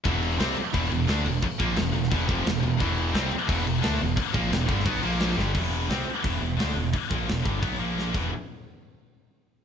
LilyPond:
<<
  \new Staff \with { instrumentName = "Distorted electric guitar" } { \clef bass \time 4/4 \key e \minor \tempo 4 = 174 <e, b, e>4 <c g c'>8 r8 <e, b, e>8 <e, b,>8 <d a d'>8 <e, b,>8 | r8 <ais, f ais>8 <e, b,>8 <e, b,>8 <e, b, e>8 <f, c f>8 <e, b,>8 <e, b,>8 | <e, b, e>4 <c g c'>8 r8 <e, b, e>8 <e, b,>8 <d a d'>8 <e, b,>8 | r8 <ais, f ais>8 <e, b,>8 <g, d g>8 <b, fis b>8 <ais, eis ais>4 <g, d g>8 |
<e, b, e>4 <c g c'>8 r8 <e, b, e>8 <e, b,>8 <d a d'>8 <e, b,>8 | r8 <ais, f ais>8 <e, b,>8 <g, d g>8 <b, fis b>8 <ais, eis ais>4 <e, b, e>8 | r1 | }
  \new Staff \with { instrumentName = "Distorted electric guitar" } { \clef bass \time 4/4 \key e \minor <e, b, e>4 <c g c'>8 r8 <e, b, e>8 <e, b,>8 <d a d'>8 <e, b,>8 | r8 <ais, f ais>8 <e, b,>8 <e, b,>8 <e, b, e>8 <f, c f>8 <e, b,>8 <e, b,>8 | <e, b, e>4 <c g c'>8 r8 <e, b, e>8 <e, b,>8 <d a d'>8 <e, b,>8 | r8 <ais, f ais>8 <e, b,>8 <g, d g>8 <b, fis b>8 <ais, eis ais>4 <g, d g>8 |
<e, b, e>4 <c g c'>8 r8 <e, b, e>8 <e, b,>8 <d a d'>8 <e, b,>8 | r8 <ais, f ais>8 <e, b,>8 <g, d g>8 <b, fis b>8 <ais, eis ais>4 <e, b, e>8 | r1 | }
  \new Staff \with { instrumentName = "Distorted electric guitar" } { \clef bass \time 4/4 \key e \minor <e, b, e>4 <c g c'>8 r8 <e, b, e>8 <e, b,>8 <d a d'>8 <e, b,>8 | r8 <ais, f ais>8 <e, b,>8 <e, b,>8 <e, b, e>8 <f, c f>8 <e, b,>8 <e, b,>8 | <e, b, e>4 <c g c'>8 r8 <e, b, e>8 <e, b,>8 <d a d'>8 <e, b,>8 | r8 <ais, f ais>8 <e, b,>8 <g, d g>8 <b, fis b>8 <ais, eis ais>4 <g, d g>8 |
r1 | r1 | r1 | }
  \new Staff \with { instrumentName = "Picked electric bass" } { \clef bass \time 4/4 \key e \minor e,,4 c,8 r8 e,,8 e,,8 d,8 e,,8 | r8 ais,,8 e,,8 e,,8 e,,8 f,,8 e,,8 e,,8 | e,,4 c,8 r8 e,,8 e,,8 d,8 e,,8 | r8 ais,,8 e,,8 g,,8 b,,8 ais,,4 g,,8 |
e,,4 c,8 r8 e,,8 e,,8 d,8 e,,8 | r8 ais,,8 e,,8 g,,8 b,,8 ais,,4 e,,8 | r1 | }
  \new DrumStaff \with { instrumentName = "Drums" } \drummode { \time 4/4 <cymc bd>8 cymc8 <cymc sn>8 cymc8 <cymc bd>8 cymc8 <cymc sn>8 cymc8 | <cymc bd>8 <cymc bd>8 <cymc sn>8 cymc16 sn16 <cymc bd>8 <cymc bd>8 <cymc sn>16 sn16 cymc8 | <cymc bd>8 cymc8 <cymc sn>8 cymc8 <cymc bd>8 cymc8 <cymc sn>16 sn16 cymc8 | <cymc bd>8 <cymc bd>8 <cymc sn>8 <cymc bd>16 sn16 <cymc bd>8 cymc8 <cymc sn>16 sn16 sn8 |
<cymc bd>4 <hho sn>4 <hho bd>4 <hho sn>16 sn8. | <hho bd>8 bd8 <hho sn>8 bd8 <hho bd>4 sn8 <cymc bd>8 | r4 r4 r4 r4 | }
>>